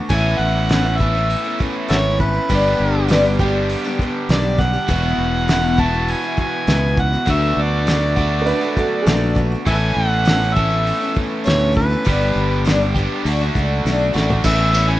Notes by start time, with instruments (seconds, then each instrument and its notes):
Already playing: overdriven electric guitar D3 A3, twelve-string acoustic guitar F#4
0.09 fingered electric bass A1, twelve-string acoustic guitar A2 E3 B3 C#4 E4, overdriven electric guitar A3, harmonica G#5, kick, open hi-hat
0.39 fingered electric bass A1, harmonica F#5
0.69 twelve-string acoustic guitar A2 E3 B3 C#4 E4, snare, open hi-hat
0.84 twelve-string acoustic guitar B3 C#4 E4
0.98 twelve-string acoustic guitar E3 B3 C#4 E4, harmonica E5, kick
1.02 overdriven electric guitar A2 E3 A3
1.15 twelve-string acoustic guitar B3 C#4 E4
1.30 open hi-hat
1.44 twelve-string acoustic guitar B3 C#4 E4
1.59 twelve-string acoustic guitar E3 B3 C#4 E4, kick
1.88 fingered electric bass G#1, twelve-string acoustic guitar A2 E3 B3 C#4 E4, harmonica F#4 A4 C#5, snare, open hi-hat
2.19 twelve-string acoustic guitar E3 B3 C#4 E4, harmonica B4, kick
2.33 twelve-string acoustic guitar B3 C#4 E4
2.49 fingered electric bass G1, twelve-string acoustic guitar G2 D3 G3 B3 D4 G4, kick, open hi-hat
2.80 fingered electric bass G1
3.08 twelve-string acoustic guitar G2 D3 G3 B3 D4 G4, upright piano B4, snare, open hi-hat
3.23 twelve-string acoustic guitar G3 B3 D4 G4
3.39 overdriven electric guitar D3, twelve-string acoustic guitar G3 B3 D4 G4, upright piano G4, kick
3.44 overdriven electric guitar G2
3.70 open hi-hat
3.84 twelve-string acoustic guitar G3 B3 D4 G4
3.99 twelve-string acoustic guitar G3 B3 D4 G4, kick
4.29 fingered electric bass B1, twelve-string acoustic guitar G2 D3 G3 B3 D4 G4, harmonica D5, snare, open hi-hat
4.58 twelve-string acoustic guitar G3 B3 D4 G4, harmonica F#5, kick, snare
4.73 twelve-string acoustic guitar G3 B3 D4 G4
4.88 fingered electric bass E1, twelve-string acoustic guitar E2 B2 E3 B3 E4 F#4, kick, open hi-hat
5.18 fingered electric bass E1
5.48 twelve-string acoustic guitar E2 B2 E3 B3 E4 F#4, snare, open hi-hat
5.77 twelve-string acoustic guitar E3 B3 E4 F#4, harmonica A5, kick
5.82 overdriven electric guitar E2 B2
5.93 twelve-string acoustic guitar E3 B3 E4 F#4
6.08 harmonica G#5, open hi-hat
6.22 twelve-string acoustic guitar E3 B3 E4 F#4
6.37 twelve-string acoustic guitar E3 B3 E4 F#4, harmonica G#5, kick
6.67 fingered electric bass C#2, twelve-string acoustic guitar E2 B2 E3 B3 E4 F#4, snare, open hi-hat
6.97 twelve-string acoustic guitar E3 B3 E4 F#4, harmonica F#5, kick
7.13 twelve-string acoustic guitar E3 B3 E4 F#4
7.26 fingered electric bass D2, twelve-string acoustic guitar D3 F#3 A3 B3 F#4, overdriven electric guitar D4, kick, open hi-hat
7.31 harmonica E5
7.57 fingered electric bass D2
7.61 harmonica D5
7.87 twelve-string acoustic guitar D3 F#3 A3 B3 F#4, snare, open hi-hat
8.16 overdriven electric guitar D3 D4, twelve-string acoustic guitar F#3 A3 B3 F#4, kick
8.41 upright piano A#4
8.46 upright piano D4 B4, open hi-hat
8.61 twelve-string acoustic guitar A3 B3 F#4
8.77 twelve-string acoustic guitar F#3 A3 B3 F#4, upright piano F#4 A4, kick
9.02 upright piano G#4, open hi-hat
9.07 fingered electric bass A#1, twelve-string acoustic guitar D3 F#3 A3 B3 F#4, upright piano A4, snare
9.35 twelve-string acoustic guitar F#3 A3 B3 F#4, kick
9.52 twelve-string acoustic guitar A3 B3 F#4
9.66 fingered electric bass A1, twelve-string acoustic guitar A2 E3 B3 C#4 E4, overdriven electric guitar A3 A4, harmonica B4 E5 G#5, kick, open hi-hat
9.93 fingered electric bass A1, harmonica F#5
10.25 twelve-string acoustic guitar A2 E3 B3 C#4 E4, snare, open hi-hat
10.42 twelve-string acoustic guitar B3 C#4 E4
10.54 twelve-string acoustic guitar E3 B3, overdriven electric guitar A4, harmonica E5, kick
10.58 overdriven electric guitar A2 A3, twelve-string acoustic guitar C#4 E4
10.70 twelve-string acoustic guitar B3 C#4 E4
10.87 open hi-hat
11.01 twelve-string acoustic guitar B3 C#4 E4
11.15 twelve-string acoustic guitar E3 B3 C#4 E4, kick
11.44 fingered electric bass D2, twelve-string acoustic guitar A2 E3 B3 C#4 E4, harmonica C#5, open hi-hat
11.48 snare
11.72 twelve-string acoustic guitar E3 B3 C#4 E4, harmonica B4
11.77 kick
11.90 twelve-string acoustic guitar B3 C#4 E4
12.04 fingered electric bass G1, twelve-string acoustic guitar G2 D3 G3 B3 D4 G4, kick, open hi-hat
12.36 fingered electric bass G1
12.65 twelve-string acoustic guitar G2 D3 G3 B3 D4 G4, snare, open hi-hat
12.80 twelve-string acoustic guitar G3 B3 D4 G4
12.96 overdriven electric guitar G2 D3, twelve-string acoustic guitar G3 B3 D4 G4, kick
13.25 fingered electric bass D2, twelve-string acoustic guitar D3 A3 D4 F#4, open hi-hat
13.41 twelve-string acoustic guitar A3 D4 F#4
13.55 fingered electric bass C#2, twelve-string acoustic guitar D3 A3 D4 F#4, kick
13.85 fingered electric bass B1, twelve-string acoustic guitar D3 A3 D4 F#4, snare
14.14 fingered electric bass A1, twelve-string acoustic guitar D3 A3 D4 F#4, snare
14.18 overdriven electric guitar D3
14.29 twelve-string acoustic guitar A3 D4 F#4, floor tom
14.44 fingered electric bass A1, twelve-string acoustic guitar A2 E3 B3 C#4 E4, overdriven electric guitar A3, tonewheel organ C#4 E4 A4 B4, harmonica E5, kick, crash, tambourine
14.72 twelve-string acoustic guitar E3 B3 C#4 E4, overdriven electric guitar A3, ride, tambourine
14.88 overdriven electric guitar A3, twelve-string acoustic guitar B3 C#4 E4, harmonica G#5